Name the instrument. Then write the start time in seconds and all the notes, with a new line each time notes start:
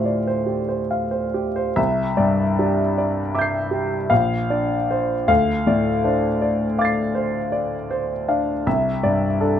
grand piano
Already playing: D2 A2 F4 G4 C5 F5
0.06 D5
0.27 C5
0.46 G4
0.69 C5
0.91 F5
1.11 C5
1.34 G4
1.56 C5
1.76 C2 E5
2.17 G2 D5
2.58 D4 G4
2.98 D5
3.35 E5 D6
3.39 G6 C7
3.71 G4
4.10 A#1 F5
4.50 D4 D5
4.91 C5
5.28 D2 F5
5.67 A2 D5
6.04 D4 C5
6.41 D5
6.79 F5 D6 A6
6.85 C7
7.15 C5
7.52 D5
7.91 C5
8.28 D4 F5
8.67 C2 E5
9.03 G2 D5
9.40 D4 A4